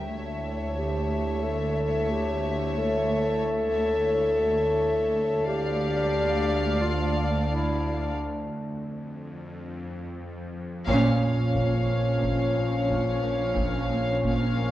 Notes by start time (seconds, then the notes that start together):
0.08 D2 A3 E4 C#5 E5 A5
0.77 G4
1.43 A4
2.11 G4
2.78 A4
5.47 D2 A3 D4 G4 D5 F5 A5
6.82 F4
7.51 E4
8.19 F2
10.87 A#1 A#2 F3 C#4 F4 C#5 F5, taiko
11.20 A#3
11.54 A#3, taiko
11.88 A#3
12.21 A#2, taiko
12.55 A#2
12.89 A#2, taiko
13.24 A#3
13.56 A#2, taiko
13.90 A#3
14.23 A#3, taiko
14.57 A#3